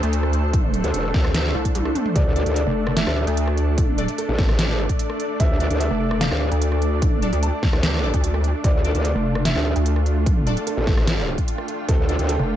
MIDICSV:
0, 0, Header, 1, 8, 480
1, 0, Start_track
1, 0, Key_signature, -1, "minor"
1, 0, Tempo, 405405
1, 633, Time_signature, 4, 2, 24, 8
1, 14873, End_track
2, 0, Start_track
2, 0, Title_t, "Ambient pad"
2, 0, Program_c, 0, 92
2, 0, Note_on_c, 0, 62, 75
2, 0, Note_on_c, 0, 69, 94
2, 0, Note_on_c, 0, 81, 79
2, 0, Note_on_c, 0, 88, 78
2, 2820, Note_on_c, 0, 86, 77
2, 2843, Note_off_c, 0, 81, 0
2, 10501, Note_on_c, 0, 79, 80
2, 10524, Note_off_c, 0, 86, 0
2, 14873, Note_off_c, 0, 62, 0
2, 14873, Note_off_c, 0, 69, 0
2, 14873, Note_off_c, 0, 79, 0
2, 14873, Note_off_c, 0, 88, 0
2, 14873, End_track
3, 0, Start_track
3, 0, Title_t, "Grand piano"
3, 0, Program_c, 1, 0
3, 2552, Note_on_c, 1, 74, 101
3, 2902, Note_off_c, 1, 74, 0
3, 3034, Note_on_c, 1, 74, 90
3, 3383, Note_off_c, 1, 74, 0
3, 3513, Note_on_c, 1, 76, 95
3, 4139, Note_off_c, 1, 76, 0
3, 4953, Note_on_c, 1, 69, 93
3, 5303, Note_off_c, 1, 69, 0
3, 6393, Note_on_c, 1, 76, 104
3, 6742, Note_off_c, 1, 76, 0
3, 6871, Note_on_c, 1, 76, 91
3, 7222, Note_off_c, 1, 76, 0
3, 7352, Note_on_c, 1, 77, 94
3, 7978, Note_off_c, 1, 77, 0
3, 8792, Note_on_c, 1, 81, 89
3, 9142, Note_off_c, 1, 81, 0
3, 10231, Note_on_c, 1, 74, 102
3, 10581, Note_off_c, 1, 74, 0
3, 10710, Note_on_c, 1, 74, 91
3, 11061, Note_off_c, 1, 74, 0
3, 11192, Note_on_c, 1, 76, 94
3, 11818, Note_off_c, 1, 76, 0
3, 12632, Note_on_c, 1, 69, 89
3, 12982, Note_off_c, 1, 69, 0
3, 14071, Note_on_c, 1, 69, 100
3, 14421, Note_off_c, 1, 69, 0
3, 14551, Note_on_c, 1, 69, 90
3, 14873, Note_off_c, 1, 69, 0
3, 14873, End_track
4, 0, Start_track
4, 0, Title_t, "Synth stab"
4, 0, Program_c, 2, 62
4, 2793, Note_on_c, 2, 62, 76
4, 2793, Note_on_c, 2, 69, 70
4, 2793, Note_on_c, 2, 74, 82
4, 2934, Note_off_c, 2, 62, 0
4, 2934, Note_off_c, 2, 69, 0
4, 2934, Note_off_c, 2, 74, 0
4, 4714, Note_on_c, 2, 62, 96
4, 4714, Note_on_c, 2, 69, 86
4, 4714, Note_on_c, 2, 74, 105
4, 4854, Note_off_c, 2, 62, 0
4, 4854, Note_off_c, 2, 69, 0
4, 4854, Note_off_c, 2, 74, 0
4, 6632, Note_on_c, 2, 62, 74
4, 6633, Note_on_c, 2, 69, 72
4, 6633, Note_on_c, 2, 74, 83
4, 6773, Note_off_c, 2, 62, 0
4, 6774, Note_off_c, 2, 69, 0
4, 6774, Note_off_c, 2, 74, 0
4, 8552, Note_on_c, 2, 62, 94
4, 8552, Note_on_c, 2, 74, 100
4, 8553, Note_on_c, 2, 69, 83
4, 8693, Note_off_c, 2, 62, 0
4, 8693, Note_off_c, 2, 74, 0
4, 8694, Note_off_c, 2, 69, 0
4, 9513, Note_on_c, 2, 62, 92
4, 9513, Note_on_c, 2, 69, 83
4, 9513, Note_on_c, 2, 74, 102
4, 9654, Note_off_c, 2, 62, 0
4, 9654, Note_off_c, 2, 69, 0
4, 9654, Note_off_c, 2, 74, 0
4, 10472, Note_on_c, 2, 62, 78
4, 10472, Note_on_c, 2, 69, 70
4, 10472, Note_on_c, 2, 74, 84
4, 10613, Note_off_c, 2, 69, 0
4, 10613, Note_off_c, 2, 74, 0
4, 10614, Note_off_c, 2, 62, 0
4, 12393, Note_on_c, 2, 62, 93
4, 12393, Note_on_c, 2, 69, 86
4, 12393, Note_on_c, 2, 74, 106
4, 12534, Note_off_c, 2, 62, 0
4, 12534, Note_off_c, 2, 69, 0
4, 12534, Note_off_c, 2, 74, 0
4, 14313, Note_on_c, 2, 69, 69
4, 14313, Note_on_c, 2, 74, 82
4, 14314, Note_on_c, 2, 62, 79
4, 14454, Note_off_c, 2, 62, 0
4, 14454, Note_off_c, 2, 69, 0
4, 14454, Note_off_c, 2, 74, 0
4, 14873, End_track
5, 0, Start_track
5, 0, Title_t, "Supersaw synth"
5, 0, Program_c, 3, 81
5, 0, Note_on_c, 3, 57, 85
5, 0, Note_on_c, 3, 62, 75
5, 0, Note_on_c, 3, 72, 88
5, 2531, Note_off_c, 3, 72, 0
5, 2554, Note_on_c, 3, 74, 91
5, 10211, Note_off_c, 3, 74, 0
5, 10234, Note_on_c, 3, 65, 91
5, 14873, Note_off_c, 3, 57, 0
5, 14873, Note_off_c, 3, 62, 0
5, 14873, Note_off_c, 3, 65, 0
5, 14873, End_track
6, 0, Start_track
6, 0, Title_t, "Wobble bass"
6, 0, Program_c, 4, 39
6, 995, Note_on_c, 4, 38, 97
6, 1094, Note_off_c, 4, 38, 0
6, 1113, Note_on_c, 4, 28, 96
6, 1334, Note_off_c, 4, 28, 0
6, 1353, Note_on_c, 4, 38, 97
6, 1814, Note_off_c, 4, 38, 0
6, 2553, Note_on_c, 4, 38, 99
6, 2896, Note_off_c, 4, 38, 0
6, 2916, Note_on_c, 4, 38, 99
6, 3136, Note_off_c, 4, 38, 0
6, 3636, Note_on_c, 4, 38, 98
6, 3856, Note_off_c, 4, 38, 0
6, 5075, Note_on_c, 4, 33, 98
6, 5573, Note_off_c, 4, 33, 0
6, 5573, Note_on_c, 4, 32, 98
6, 5776, Note_off_c, 4, 32, 0
6, 6393, Note_on_c, 4, 38, 99
6, 6735, Note_off_c, 4, 38, 0
6, 6754, Note_on_c, 4, 38, 99
6, 6975, Note_off_c, 4, 38, 0
6, 7475, Note_on_c, 4, 38, 97
6, 7696, Note_off_c, 4, 38, 0
6, 9154, Note_on_c, 4, 38, 97
6, 9615, Note_off_c, 4, 38, 0
6, 10232, Note_on_c, 4, 38, 97
6, 10575, Note_off_c, 4, 38, 0
6, 10594, Note_on_c, 4, 38, 101
6, 10815, Note_off_c, 4, 38, 0
6, 11314, Note_on_c, 4, 38, 97
6, 11535, Note_off_c, 4, 38, 0
6, 12755, Note_on_c, 4, 33, 100
6, 13456, Note_off_c, 4, 33, 0
6, 14073, Note_on_c, 4, 38, 98
6, 14416, Note_off_c, 4, 38, 0
6, 14434, Note_on_c, 4, 38, 98
6, 14655, Note_off_c, 4, 38, 0
6, 14873, End_track
7, 0, Start_track
7, 0, Title_t, "Wobble bass"
7, 0, Program_c, 5, 39
7, 36, Note_on_c, 5, 38, 96
7, 976, Note_off_c, 5, 38, 0
7, 1834, Note_on_c, 5, 36, 94
7, 2295, Note_off_c, 5, 36, 0
7, 3156, Note_on_c, 5, 29, 100
7, 3616, Note_off_c, 5, 29, 0
7, 3876, Note_on_c, 5, 38, 95
7, 4816, Note_off_c, 5, 38, 0
7, 6994, Note_on_c, 5, 29, 100
7, 7455, Note_off_c, 5, 29, 0
7, 7715, Note_on_c, 5, 38, 94
7, 8655, Note_off_c, 5, 38, 0
7, 8675, Note_on_c, 5, 38, 94
7, 8895, Note_off_c, 5, 38, 0
7, 9635, Note_on_c, 5, 38, 96
7, 10096, Note_off_c, 5, 38, 0
7, 10835, Note_on_c, 5, 29, 103
7, 11295, Note_off_c, 5, 29, 0
7, 11554, Note_on_c, 5, 38, 97
7, 12495, Note_off_c, 5, 38, 0
7, 14675, Note_on_c, 5, 29, 105
7, 14873, Note_off_c, 5, 29, 0
7, 14873, End_track
8, 0, Start_track
8, 0, Title_t, "Drums"
8, 35, Note_on_c, 9, 42, 52
8, 153, Note_off_c, 9, 42, 0
8, 153, Note_on_c, 9, 42, 81
8, 272, Note_off_c, 9, 42, 0
8, 275, Note_on_c, 9, 37, 63
8, 393, Note_off_c, 9, 37, 0
8, 393, Note_on_c, 9, 42, 53
8, 511, Note_off_c, 9, 42, 0
8, 633, Note_on_c, 9, 36, 116
8, 633, Note_on_c, 9, 42, 79
8, 751, Note_off_c, 9, 36, 0
8, 751, Note_off_c, 9, 42, 0
8, 872, Note_on_c, 9, 42, 54
8, 991, Note_off_c, 9, 42, 0
8, 995, Note_on_c, 9, 42, 53
8, 1113, Note_off_c, 9, 42, 0
8, 1113, Note_on_c, 9, 42, 83
8, 1231, Note_off_c, 9, 42, 0
8, 1352, Note_on_c, 9, 38, 61
8, 1353, Note_on_c, 9, 36, 104
8, 1471, Note_off_c, 9, 36, 0
8, 1471, Note_off_c, 9, 38, 0
8, 1475, Note_on_c, 9, 37, 83
8, 1593, Note_off_c, 9, 37, 0
8, 1593, Note_on_c, 9, 38, 119
8, 1593, Note_on_c, 9, 42, 86
8, 1711, Note_off_c, 9, 38, 0
8, 1711, Note_off_c, 9, 42, 0
8, 1955, Note_on_c, 9, 36, 58
8, 1955, Note_on_c, 9, 42, 53
8, 2073, Note_off_c, 9, 42, 0
8, 2073, Note_on_c, 9, 42, 84
8, 2073, Note_on_c, 9, 48, 61
8, 2074, Note_off_c, 9, 36, 0
8, 2191, Note_off_c, 9, 42, 0
8, 2191, Note_off_c, 9, 48, 0
8, 2195, Note_on_c, 9, 37, 66
8, 2195, Note_on_c, 9, 48, 63
8, 2313, Note_on_c, 9, 42, 53
8, 2313, Note_on_c, 9, 47, 84
8, 2314, Note_off_c, 9, 37, 0
8, 2314, Note_off_c, 9, 48, 0
8, 2432, Note_off_c, 9, 42, 0
8, 2432, Note_off_c, 9, 47, 0
8, 2435, Note_on_c, 9, 45, 83
8, 2553, Note_off_c, 9, 45, 0
8, 2553, Note_on_c, 9, 42, 81
8, 2554, Note_on_c, 9, 36, 121
8, 2671, Note_off_c, 9, 42, 0
8, 2672, Note_off_c, 9, 36, 0
8, 2793, Note_on_c, 9, 42, 57
8, 2912, Note_off_c, 9, 42, 0
8, 2915, Note_on_c, 9, 42, 55
8, 3033, Note_off_c, 9, 42, 0
8, 3033, Note_on_c, 9, 42, 83
8, 3151, Note_off_c, 9, 42, 0
8, 3395, Note_on_c, 9, 37, 83
8, 3512, Note_on_c, 9, 38, 126
8, 3512, Note_on_c, 9, 42, 87
8, 3513, Note_off_c, 9, 37, 0
8, 3631, Note_off_c, 9, 38, 0
8, 3631, Note_off_c, 9, 42, 0
8, 3635, Note_on_c, 9, 37, 83
8, 3753, Note_off_c, 9, 37, 0
8, 3875, Note_on_c, 9, 42, 55
8, 3992, Note_off_c, 9, 42, 0
8, 3992, Note_on_c, 9, 42, 82
8, 4111, Note_off_c, 9, 42, 0
8, 4115, Note_on_c, 9, 37, 64
8, 4233, Note_off_c, 9, 37, 0
8, 4233, Note_on_c, 9, 42, 54
8, 4351, Note_off_c, 9, 42, 0
8, 4473, Note_on_c, 9, 36, 122
8, 4473, Note_on_c, 9, 42, 85
8, 4591, Note_off_c, 9, 42, 0
8, 4592, Note_off_c, 9, 36, 0
8, 4712, Note_on_c, 9, 42, 57
8, 4831, Note_off_c, 9, 42, 0
8, 4835, Note_on_c, 9, 42, 54
8, 4952, Note_off_c, 9, 42, 0
8, 4952, Note_on_c, 9, 42, 84
8, 5071, Note_off_c, 9, 42, 0
8, 5193, Note_on_c, 9, 36, 113
8, 5193, Note_on_c, 9, 38, 64
8, 5311, Note_off_c, 9, 36, 0
8, 5311, Note_off_c, 9, 38, 0
8, 5315, Note_on_c, 9, 37, 77
8, 5432, Note_on_c, 9, 38, 127
8, 5432, Note_on_c, 9, 42, 88
8, 5433, Note_off_c, 9, 37, 0
8, 5551, Note_off_c, 9, 38, 0
8, 5551, Note_off_c, 9, 42, 0
8, 5794, Note_on_c, 9, 42, 54
8, 5795, Note_on_c, 9, 36, 62
8, 5912, Note_off_c, 9, 42, 0
8, 5912, Note_on_c, 9, 42, 83
8, 5913, Note_off_c, 9, 36, 0
8, 6031, Note_off_c, 9, 42, 0
8, 6034, Note_on_c, 9, 37, 64
8, 6152, Note_off_c, 9, 37, 0
8, 6153, Note_on_c, 9, 42, 56
8, 6271, Note_off_c, 9, 42, 0
8, 6392, Note_on_c, 9, 42, 80
8, 6393, Note_on_c, 9, 36, 123
8, 6511, Note_off_c, 9, 36, 0
8, 6511, Note_off_c, 9, 42, 0
8, 6633, Note_on_c, 9, 42, 54
8, 6751, Note_off_c, 9, 42, 0
8, 6755, Note_on_c, 9, 42, 56
8, 6873, Note_off_c, 9, 42, 0
8, 6873, Note_on_c, 9, 42, 81
8, 6991, Note_off_c, 9, 42, 0
8, 7234, Note_on_c, 9, 37, 77
8, 7353, Note_off_c, 9, 37, 0
8, 7353, Note_on_c, 9, 38, 127
8, 7353, Note_on_c, 9, 42, 88
8, 7471, Note_off_c, 9, 38, 0
8, 7471, Note_off_c, 9, 42, 0
8, 7475, Note_on_c, 9, 37, 78
8, 7593, Note_off_c, 9, 37, 0
8, 7715, Note_on_c, 9, 42, 55
8, 7833, Note_off_c, 9, 42, 0
8, 7833, Note_on_c, 9, 42, 82
8, 7951, Note_off_c, 9, 42, 0
8, 7955, Note_on_c, 9, 37, 61
8, 8073, Note_on_c, 9, 42, 56
8, 8074, Note_off_c, 9, 37, 0
8, 8191, Note_off_c, 9, 42, 0
8, 8313, Note_on_c, 9, 36, 122
8, 8313, Note_on_c, 9, 42, 78
8, 8431, Note_off_c, 9, 36, 0
8, 8431, Note_off_c, 9, 42, 0
8, 8553, Note_on_c, 9, 42, 53
8, 8671, Note_off_c, 9, 42, 0
8, 8675, Note_on_c, 9, 42, 52
8, 8793, Note_off_c, 9, 42, 0
8, 8793, Note_on_c, 9, 42, 79
8, 8912, Note_off_c, 9, 42, 0
8, 9032, Note_on_c, 9, 36, 114
8, 9033, Note_on_c, 9, 38, 65
8, 9151, Note_off_c, 9, 36, 0
8, 9151, Note_off_c, 9, 38, 0
8, 9155, Note_on_c, 9, 37, 77
8, 9273, Note_off_c, 9, 37, 0
8, 9273, Note_on_c, 9, 38, 127
8, 9273, Note_on_c, 9, 42, 85
8, 9391, Note_off_c, 9, 38, 0
8, 9391, Note_off_c, 9, 42, 0
8, 9634, Note_on_c, 9, 36, 64
8, 9635, Note_on_c, 9, 42, 53
8, 9753, Note_off_c, 9, 36, 0
8, 9753, Note_off_c, 9, 42, 0
8, 9753, Note_on_c, 9, 42, 80
8, 9871, Note_off_c, 9, 42, 0
8, 9875, Note_on_c, 9, 37, 59
8, 9993, Note_on_c, 9, 42, 53
8, 9994, Note_off_c, 9, 37, 0
8, 10111, Note_off_c, 9, 42, 0
8, 10232, Note_on_c, 9, 36, 123
8, 10232, Note_on_c, 9, 42, 74
8, 10350, Note_off_c, 9, 36, 0
8, 10351, Note_off_c, 9, 42, 0
8, 10473, Note_on_c, 9, 42, 51
8, 10591, Note_off_c, 9, 42, 0
8, 10594, Note_on_c, 9, 42, 49
8, 10712, Note_off_c, 9, 42, 0
8, 10712, Note_on_c, 9, 42, 76
8, 10831, Note_off_c, 9, 42, 0
8, 11075, Note_on_c, 9, 37, 74
8, 11192, Note_on_c, 9, 38, 127
8, 11192, Note_on_c, 9, 42, 80
8, 11193, Note_off_c, 9, 37, 0
8, 11310, Note_off_c, 9, 38, 0
8, 11310, Note_off_c, 9, 42, 0
8, 11314, Note_on_c, 9, 37, 76
8, 11433, Note_off_c, 9, 37, 0
8, 11554, Note_on_c, 9, 42, 51
8, 11672, Note_off_c, 9, 42, 0
8, 11672, Note_on_c, 9, 42, 77
8, 11790, Note_off_c, 9, 42, 0
8, 11795, Note_on_c, 9, 37, 61
8, 11912, Note_on_c, 9, 42, 51
8, 11913, Note_off_c, 9, 37, 0
8, 12031, Note_off_c, 9, 42, 0
8, 12152, Note_on_c, 9, 36, 113
8, 12153, Note_on_c, 9, 42, 77
8, 12271, Note_off_c, 9, 36, 0
8, 12271, Note_off_c, 9, 42, 0
8, 12393, Note_on_c, 9, 42, 53
8, 12511, Note_off_c, 9, 42, 0
8, 12514, Note_on_c, 9, 42, 51
8, 12632, Note_off_c, 9, 42, 0
8, 12632, Note_on_c, 9, 42, 77
8, 12751, Note_off_c, 9, 42, 0
8, 12873, Note_on_c, 9, 36, 105
8, 12873, Note_on_c, 9, 38, 59
8, 12991, Note_off_c, 9, 36, 0
8, 12991, Note_off_c, 9, 38, 0
8, 12994, Note_on_c, 9, 37, 79
8, 13112, Note_off_c, 9, 37, 0
8, 13112, Note_on_c, 9, 38, 125
8, 13112, Note_on_c, 9, 42, 79
8, 13231, Note_off_c, 9, 38, 0
8, 13231, Note_off_c, 9, 42, 0
8, 13474, Note_on_c, 9, 42, 50
8, 13475, Note_on_c, 9, 36, 57
8, 13592, Note_off_c, 9, 42, 0
8, 13592, Note_on_c, 9, 42, 74
8, 13593, Note_off_c, 9, 36, 0
8, 13710, Note_off_c, 9, 42, 0
8, 13714, Note_on_c, 9, 37, 63
8, 13832, Note_on_c, 9, 42, 52
8, 13833, Note_off_c, 9, 37, 0
8, 13950, Note_off_c, 9, 42, 0
8, 14072, Note_on_c, 9, 42, 79
8, 14073, Note_on_c, 9, 36, 112
8, 14191, Note_off_c, 9, 42, 0
8, 14192, Note_off_c, 9, 36, 0
8, 14312, Note_on_c, 9, 42, 53
8, 14431, Note_off_c, 9, 42, 0
8, 14434, Note_on_c, 9, 42, 51
8, 14552, Note_off_c, 9, 42, 0
8, 14552, Note_on_c, 9, 42, 80
8, 14670, Note_off_c, 9, 42, 0
8, 14873, End_track
0, 0, End_of_file